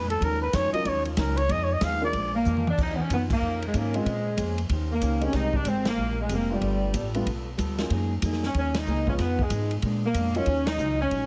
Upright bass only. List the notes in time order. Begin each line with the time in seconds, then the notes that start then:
Already playing: F2
0.21 D#2
0.53 F2
0.72 muted upright bass stroke
0.85 D#2
1.17 C#2
1.49 F2
1.81 D#2
2.13 A#1
2.46 F2
2.78 D#2
3.10 F#2
3.41 F2
3.74 G#2
4.05 A#2
4.37 F2
4.69 D#2
5.01 C#2
5.33 C2
5.65 G#1
5.97 A#1
6.29 F1
6.61 G1
6.93 A1
7.26 B1
7.58 D2
7.90 F#2
8.22 F2
8.54 D#2
8.86 C#2
9.19 F2
9.50 G#2
9.82 A#2
10.14 F2
10.46 D#2
10.78 C#2
11.11 A#1